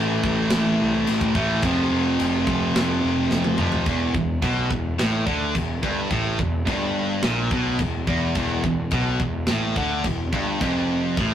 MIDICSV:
0, 0, Header, 1, 4, 480
1, 0, Start_track
1, 0, Tempo, 561272
1, 1394, Time_signature, 4, 2, 24, 8
1, 9698, End_track
2, 0, Start_track
2, 0, Title_t, "Distorted electric guitar"
2, 0, Program_c, 0, 30
2, 0, Note_on_c, 0, 45, 94
2, 0, Note_on_c, 0, 52, 108
2, 0, Note_on_c, 0, 57, 99
2, 1139, Note_off_c, 0, 45, 0
2, 1144, Note_off_c, 0, 52, 0
2, 1147, Note_off_c, 0, 57, 0
2, 1157, Note_on_c, 0, 57, 95
2, 1169, Note_on_c, 0, 52, 77
2, 1177, Note_on_c, 0, 45, 78
2, 1380, Note_off_c, 0, 57, 0
2, 1386, Note_off_c, 0, 52, 0
2, 1390, Note_off_c, 0, 45, 0
2, 1393, Note_on_c, 0, 41, 97
2, 1406, Note_on_c, 0, 48, 90
2, 1417, Note_on_c, 0, 53, 102
2, 3044, Note_off_c, 0, 53, 0
2, 3051, Note_off_c, 0, 41, 0
2, 3055, Note_on_c, 0, 53, 91
2, 3057, Note_off_c, 0, 48, 0
2, 3066, Note_on_c, 0, 48, 90
2, 3074, Note_on_c, 0, 41, 82
2, 3285, Note_off_c, 0, 53, 0
2, 3291, Note_off_c, 0, 48, 0
2, 3295, Note_off_c, 0, 41, 0
2, 3305, Note_on_c, 0, 40, 98
2, 3532, Note_off_c, 0, 40, 0
2, 3542, Note_on_c, 0, 40, 69
2, 3735, Note_off_c, 0, 40, 0
2, 3786, Note_on_c, 0, 47, 99
2, 4018, Note_off_c, 0, 47, 0
2, 4023, Note_on_c, 0, 40, 64
2, 4215, Note_off_c, 0, 40, 0
2, 4266, Note_on_c, 0, 45, 107
2, 4498, Note_off_c, 0, 45, 0
2, 4504, Note_on_c, 0, 50, 96
2, 4737, Note_off_c, 0, 50, 0
2, 4745, Note_on_c, 0, 40, 66
2, 4937, Note_off_c, 0, 40, 0
2, 4987, Note_on_c, 0, 43, 98
2, 5220, Note_off_c, 0, 43, 0
2, 5222, Note_on_c, 0, 45, 93
2, 5457, Note_off_c, 0, 45, 0
2, 5465, Note_on_c, 0, 40, 74
2, 5659, Note_off_c, 0, 40, 0
2, 5701, Note_on_c, 0, 43, 99
2, 6179, Note_off_c, 0, 43, 0
2, 6193, Note_on_c, 0, 46, 98
2, 6424, Note_off_c, 0, 46, 0
2, 6438, Note_on_c, 0, 47, 98
2, 6668, Note_off_c, 0, 47, 0
2, 6674, Note_on_c, 0, 40, 67
2, 6865, Note_off_c, 0, 40, 0
2, 6912, Note_on_c, 0, 40, 94
2, 7143, Note_off_c, 0, 40, 0
2, 7153, Note_on_c, 0, 40, 96
2, 7381, Note_off_c, 0, 40, 0
2, 7392, Note_on_c, 0, 40, 68
2, 7585, Note_off_c, 0, 40, 0
2, 7630, Note_on_c, 0, 47, 104
2, 7866, Note_off_c, 0, 47, 0
2, 7872, Note_on_c, 0, 40, 66
2, 8066, Note_off_c, 0, 40, 0
2, 8115, Note_on_c, 0, 45, 110
2, 8349, Note_off_c, 0, 45, 0
2, 8364, Note_on_c, 0, 50, 98
2, 8594, Note_off_c, 0, 50, 0
2, 8600, Note_on_c, 0, 40, 71
2, 8791, Note_off_c, 0, 40, 0
2, 8837, Note_on_c, 0, 43, 102
2, 9071, Note_off_c, 0, 43, 0
2, 9076, Note_on_c, 0, 41, 98
2, 9552, Note_off_c, 0, 41, 0
2, 9555, Note_on_c, 0, 45, 101
2, 9698, Note_off_c, 0, 45, 0
2, 9698, End_track
3, 0, Start_track
3, 0, Title_t, "Picked electric bass"
3, 0, Program_c, 1, 34
3, 0, Note_on_c, 1, 33, 93
3, 198, Note_off_c, 1, 33, 0
3, 202, Note_on_c, 1, 33, 91
3, 431, Note_off_c, 1, 33, 0
3, 448, Note_on_c, 1, 33, 90
3, 673, Note_off_c, 1, 33, 0
3, 686, Note_on_c, 1, 36, 93
3, 911, Note_off_c, 1, 36, 0
3, 925, Note_on_c, 1, 33, 99
3, 1379, Note_off_c, 1, 33, 0
3, 1397, Note_on_c, 1, 29, 99
3, 1625, Note_off_c, 1, 29, 0
3, 1644, Note_on_c, 1, 29, 88
3, 1867, Note_off_c, 1, 29, 0
3, 1877, Note_on_c, 1, 29, 97
3, 2103, Note_off_c, 1, 29, 0
3, 2116, Note_on_c, 1, 29, 95
3, 2342, Note_off_c, 1, 29, 0
3, 2348, Note_on_c, 1, 29, 88
3, 2578, Note_off_c, 1, 29, 0
3, 2590, Note_on_c, 1, 29, 93
3, 2818, Note_off_c, 1, 29, 0
3, 2824, Note_on_c, 1, 29, 93
3, 3055, Note_off_c, 1, 29, 0
3, 3062, Note_on_c, 1, 29, 92
3, 3294, Note_off_c, 1, 29, 0
3, 3309, Note_on_c, 1, 28, 89
3, 3530, Note_off_c, 1, 28, 0
3, 3547, Note_on_c, 1, 28, 68
3, 3769, Note_off_c, 1, 28, 0
3, 3788, Note_on_c, 1, 35, 86
3, 4009, Note_off_c, 1, 35, 0
3, 4025, Note_on_c, 1, 28, 78
3, 4248, Note_off_c, 1, 28, 0
3, 4271, Note_on_c, 1, 33, 87
3, 4491, Note_off_c, 1, 33, 0
3, 4505, Note_on_c, 1, 38, 86
3, 4728, Note_off_c, 1, 38, 0
3, 4746, Note_on_c, 1, 28, 74
3, 4969, Note_off_c, 1, 28, 0
3, 4989, Note_on_c, 1, 31, 91
3, 5211, Note_off_c, 1, 31, 0
3, 5227, Note_on_c, 1, 33, 90
3, 5450, Note_off_c, 1, 33, 0
3, 5464, Note_on_c, 1, 28, 76
3, 5689, Note_off_c, 1, 28, 0
3, 5710, Note_on_c, 1, 31, 88
3, 6157, Note_off_c, 1, 31, 0
3, 6198, Note_on_c, 1, 34, 89
3, 6418, Note_off_c, 1, 34, 0
3, 6428, Note_on_c, 1, 35, 85
3, 6653, Note_off_c, 1, 35, 0
3, 6666, Note_on_c, 1, 28, 74
3, 6892, Note_off_c, 1, 28, 0
3, 6903, Note_on_c, 1, 28, 92
3, 7131, Note_off_c, 1, 28, 0
3, 7148, Note_on_c, 1, 28, 91
3, 7374, Note_off_c, 1, 28, 0
3, 7390, Note_on_c, 1, 28, 73
3, 7616, Note_off_c, 1, 28, 0
3, 7630, Note_on_c, 1, 35, 83
3, 7856, Note_off_c, 1, 35, 0
3, 7866, Note_on_c, 1, 28, 75
3, 8094, Note_off_c, 1, 28, 0
3, 8128, Note_on_c, 1, 33, 84
3, 8343, Note_off_c, 1, 33, 0
3, 8348, Note_on_c, 1, 38, 89
3, 8576, Note_off_c, 1, 38, 0
3, 8593, Note_on_c, 1, 28, 73
3, 8819, Note_off_c, 1, 28, 0
3, 8835, Note_on_c, 1, 31, 91
3, 9061, Note_off_c, 1, 31, 0
3, 9076, Note_on_c, 1, 29, 100
3, 9525, Note_off_c, 1, 29, 0
3, 9559, Note_on_c, 1, 33, 88
3, 9698, Note_off_c, 1, 33, 0
3, 9698, End_track
4, 0, Start_track
4, 0, Title_t, "Drums"
4, 201, Note_on_c, 9, 36, 91
4, 286, Note_off_c, 9, 36, 0
4, 430, Note_on_c, 9, 52, 71
4, 431, Note_on_c, 9, 38, 118
4, 515, Note_off_c, 9, 52, 0
4, 517, Note_off_c, 9, 38, 0
4, 917, Note_on_c, 9, 52, 74
4, 1002, Note_off_c, 9, 52, 0
4, 1036, Note_on_c, 9, 36, 85
4, 1122, Note_off_c, 9, 36, 0
4, 1155, Note_on_c, 9, 36, 88
4, 1240, Note_off_c, 9, 36, 0
4, 1388, Note_on_c, 9, 52, 63
4, 1394, Note_on_c, 9, 36, 114
4, 1473, Note_off_c, 9, 52, 0
4, 1480, Note_off_c, 9, 36, 0
4, 1878, Note_on_c, 9, 52, 69
4, 1963, Note_off_c, 9, 52, 0
4, 2113, Note_on_c, 9, 36, 99
4, 2198, Note_off_c, 9, 36, 0
4, 2358, Note_on_c, 9, 52, 60
4, 2360, Note_on_c, 9, 38, 109
4, 2443, Note_off_c, 9, 52, 0
4, 2445, Note_off_c, 9, 38, 0
4, 2830, Note_on_c, 9, 38, 73
4, 2915, Note_off_c, 9, 38, 0
4, 2945, Note_on_c, 9, 48, 74
4, 3030, Note_off_c, 9, 48, 0
4, 3061, Note_on_c, 9, 45, 93
4, 3146, Note_off_c, 9, 45, 0
4, 3182, Note_on_c, 9, 43, 87
4, 3267, Note_off_c, 9, 43, 0
4, 3303, Note_on_c, 9, 36, 101
4, 3305, Note_on_c, 9, 52, 52
4, 3389, Note_off_c, 9, 36, 0
4, 3391, Note_off_c, 9, 52, 0
4, 3545, Note_on_c, 9, 36, 92
4, 3630, Note_off_c, 9, 36, 0
4, 3783, Note_on_c, 9, 36, 101
4, 3786, Note_on_c, 9, 52, 57
4, 3869, Note_off_c, 9, 36, 0
4, 3871, Note_off_c, 9, 52, 0
4, 4025, Note_on_c, 9, 36, 89
4, 4110, Note_off_c, 9, 36, 0
4, 4269, Note_on_c, 9, 52, 51
4, 4270, Note_on_c, 9, 38, 96
4, 4354, Note_off_c, 9, 52, 0
4, 4356, Note_off_c, 9, 38, 0
4, 4504, Note_on_c, 9, 36, 90
4, 4590, Note_off_c, 9, 36, 0
4, 4747, Note_on_c, 9, 36, 88
4, 4754, Note_on_c, 9, 52, 58
4, 4832, Note_off_c, 9, 36, 0
4, 4840, Note_off_c, 9, 52, 0
4, 4985, Note_on_c, 9, 36, 95
4, 5071, Note_off_c, 9, 36, 0
4, 5223, Note_on_c, 9, 36, 95
4, 5223, Note_on_c, 9, 52, 49
4, 5309, Note_off_c, 9, 36, 0
4, 5309, Note_off_c, 9, 52, 0
4, 5464, Note_on_c, 9, 36, 83
4, 5549, Note_off_c, 9, 36, 0
4, 5704, Note_on_c, 9, 36, 98
4, 5709, Note_on_c, 9, 52, 49
4, 5790, Note_off_c, 9, 36, 0
4, 5795, Note_off_c, 9, 52, 0
4, 6179, Note_on_c, 9, 52, 51
4, 6181, Note_on_c, 9, 38, 100
4, 6265, Note_off_c, 9, 52, 0
4, 6267, Note_off_c, 9, 38, 0
4, 6424, Note_on_c, 9, 36, 95
4, 6509, Note_off_c, 9, 36, 0
4, 6660, Note_on_c, 9, 52, 54
4, 6663, Note_on_c, 9, 36, 88
4, 6745, Note_off_c, 9, 52, 0
4, 6749, Note_off_c, 9, 36, 0
4, 6904, Note_on_c, 9, 36, 104
4, 6990, Note_off_c, 9, 36, 0
4, 7140, Note_on_c, 9, 52, 52
4, 7145, Note_on_c, 9, 36, 101
4, 7226, Note_off_c, 9, 52, 0
4, 7230, Note_off_c, 9, 36, 0
4, 7386, Note_on_c, 9, 36, 85
4, 7471, Note_off_c, 9, 36, 0
4, 7618, Note_on_c, 9, 52, 52
4, 7625, Note_on_c, 9, 36, 106
4, 7703, Note_off_c, 9, 52, 0
4, 7711, Note_off_c, 9, 36, 0
4, 7866, Note_on_c, 9, 36, 91
4, 7951, Note_off_c, 9, 36, 0
4, 8095, Note_on_c, 9, 52, 51
4, 8097, Note_on_c, 9, 38, 102
4, 8181, Note_off_c, 9, 52, 0
4, 8183, Note_off_c, 9, 38, 0
4, 8348, Note_on_c, 9, 36, 94
4, 8433, Note_off_c, 9, 36, 0
4, 8586, Note_on_c, 9, 52, 60
4, 8590, Note_on_c, 9, 36, 90
4, 8671, Note_off_c, 9, 52, 0
4, 8676, Note_off_c, 9, 36, 0
4, 8831, Note_on_c, 9, 36, 94
4, 8917, Note_off_c, 9, 36, 0
4, 9074, Note_on_c, 9, 36, 100
4, 9074, Note_on_c, 9, 52, 55
4, 9159, Note_off_c, 9, 36, 0
4, 9159, Note_off_c, 9, 52, 0
4, 9553, Note_on_c, 9, 52, 52
4, 9555, Note_on_c, 9, 36, 110
4, 9639, Note_off_c, 9, 52, 0
4, 9641, Note_off_c, 9, 36, 0
4, 9698, End_track
0, 0, End_of_file